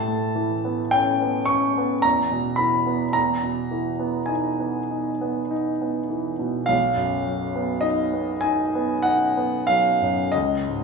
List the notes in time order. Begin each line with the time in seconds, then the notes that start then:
Already playing: A2 A5
0.08 A3
0.36 E3
0.65 B3
0.91 C#4 G5
1.22 B3
1.46 C#4 C#6
1.78 B3
2.02 E2 A#5
2.31 B2
2.56 E3 B5
2.86 B3
3.13 E2 A#5
3.43 B2
3.71 E3
3.99 B3
4.26 D#4 G#5
4.59 B3
4.91 D#4
5.21 B3
5.51 D#4
5.82 B3
6.10 E3
6.39 B2
6.66 B1 F5
6.96 F#2
7.26 F#3
7.56 B3
7.81 D#4 D#5
8.13 B3
8.41 D#4 G#5
8.75 B3
9.02 D#4 F#5
9.37 B3
9.67 F#3 F5
10.01 F#2
10.32 C#2 D#5
10.68 G#2